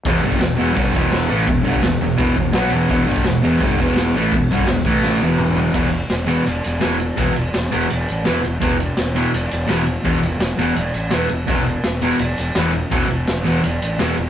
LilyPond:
<<
  \new Staff \with { instrumentName = "Distorted electric guitar" } { \clef bass \time 4/4 \key a \lydian \tempo 4 = 168 <e, b, e>8 <g, d g>8 <e, b,>8 <e, b, e>8 <g, d g>8 <e, b, e>4 <a, e a>8 | <e, b,>8 <g, d g>8 <e, b,>8 <e, b,>8 <e, b, e>8 <e, b,>8 <b, fis b>8 <e, b, e>8 | <e, b, e>8 <g, d g>8 <e, b,>8 <e, b, e>8 <g, d g>8 <e, b, e>4 <a, e a>8 | <e, b,>8 <g, d g>8 <e, b,>8 <a, e a>4 <e, b, e>4. |
<e, b, e>8 r4 <e, b, e>8 r4 <e, b, e>8 r8 | <e, b, e>8 r4 <e, b, e>8 r4 <e, b, e>8 r8 | <e, b, e>8 r4 <e, b, e>8 r4 <e, b, e>8 r8 | <e, b, e>8 r4 <e, b, e>8 r4 <e, b, e>8 r8 |
<e, b, e>8 r4 <e, b, e>8 r4 <e, b, e>8 r8 | <e, b, e>8 r4 <e, b, e>8 r4 <e, b, e>8 r8 | }
  \new Staff \with { instrumentName = "Fingered electric bass" } { \clef bass \time 4/4 \key a \lydian e,,8 g,,8 e,,8 e,,8 g,,8 e,,4 a,,8 | e,,8 g,,8 e,,8 e,,8 e,,8 e,,8 b,,8 e,,8 | e,,8 g,,8 e,,8 e,,8 g,,8 e,,4 a,,8 | e,,8 g,,8 e,,8 a,,4 e,,4. |
e,,4 e,,4 e,,8 e,,8 e,,4 | e,,8 e,,8 e,,8 e,,8 e,,8 a,,8 e,8 e,,8 | e,,4 e,,4 e,,8 e,,8 e,,4 | e,,8 e,,8 e,,8 e,,8 e,,8 a,,8 e,8 e,,8 |
e,,4 e,,4 e,,8 e,,8 e,,4 | e,,8 e,,8 e,,8 e,,8 e,,8 a,,8 e,8 e,,8 | }
  \new DrumStaff \with { instrumentName = "Drums" } \drummode { \time 4/4 <hho bd>8. bd16 <hho sn>4 <hho bd>8 bd8 <hho sn>4 | <hho bd>8. bd16 <hho sn>4 <hho bd>8 bd8 <hho sn>4 | <hho bd>8. bd16 <hho sn>4 <hho bd>8 bd8 <hho sn>4 | <hho bd>8 sn16 bd16 <hho sn>8 bd8 sn8 tommh8 toml8 tomfh8 |
<cymc bd>8 cymr8 <cymr sn>8 cymr8 cymr8 cymr8 <cymr sn>8 cymr8 | <bd cymr>8 cymr8 <cymr sn>8 cymr8 cymr8 cymr8 <cymr sn>8 cymr8 | <bd cymr>8 cymr8 <cymr sn>8 cymr8 cymr8 cymr8 <cymr sn>8 cymr8 | <bd cymr>8 cymr8 <cymr sn>8 cymr8 cymr8 cymr8 <cymr sn>8 cymr8 |
<bd cymr>8 cymr8 <cymr sn>8 cymr8 cymr8 cymr8 <cymr sn>8 cymr8 | <bd cymr>8 cymr8 <cymr sn>8 cymr8 cymr8 cymr8 <cymr sn>8 cymr8 | }
>>